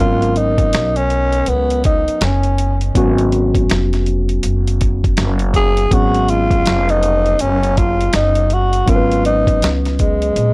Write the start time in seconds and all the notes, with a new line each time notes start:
Already playing: F#3
0.00 G#1 B3 C#4 F4 A#4
0.22 closed hi-hat
0.36 D#4, closed hi-hat
0.58 kick, closed hi-hat
0.73 B1, snare, closed hi-hat
0.96 C#4, closed hi-hat
1.10 closed hi-hat
1.32 closed hi-hat
1.46 C#2 B3, closed hi-hat
1.70 closed hi-hat
1.84 D#4, kick, closed hi-hat
2.07 muted upright bass stroke, closed hi-hat
2.21 F#1 C#4, snare, closed hi-hat
2.43 closed hi-hat
2.58 closed hi-hat
2.81 closed hi-hat
2.95 G#1 F#3 B3 C#4 F#4, kick, closed hi-hat
3.18 closed hi-hat
3.32 closed hi-hat
3.55 kick, closed hi-hat
3.70 F1, snare, closed hi-hat
3.93 snare, closed hi-hat
4.06 closed hi-hat
4.29 closed hi-hat
4.43 F#1, closed hi-hat
4.67 closed hi-hat
4.81 kick, closed hi-hat
5.04 kick, closed hi-hat
5.17 F#1, snare, closed hi-hat
5.39 closed hi-hat
5.54 G#4, kick, closed hi-hat
5.77 closed hi-hat
5.91 G#1 F#3 B3 C#4 F#4 G#4, kick, closed hi-hat
6.14 closed hi-hat
6.28 F4, closed hi-hat
6.51 kick, closed hi-hat
6.66 F1, snare, closed hi-hat
6.89 D#4, closed hi-hat
7.03 closed hi-hat
7.26 closed hi-hat
7.39 F#1 C#4, closed hi-hat
7.63 closed hi-hat
7.77 F4, kick, closed hi-hat
8.01 closed hi-hat
8.13 F#1 D#4, snare, closed hi-hat
8.35 closed hi-hat
8.50 F#4, closed hi-hat
8.73 closed hi-hat
8.86 G#1 F#3 B3 C#4 F4 A#4, kick, closed hi-hat
8.96 B4
9.12 closed hi-hat
9.25 D#4, closed hi-hat
9.47 kick, closed hi-hat
9.62 C#2, snare, closed hi-hat
9.85 snare, closed hi-hat
9.99 G#3, kick, closed hi-hat
10.22 closed hi-hat
10.36 A#1, closed hi-hat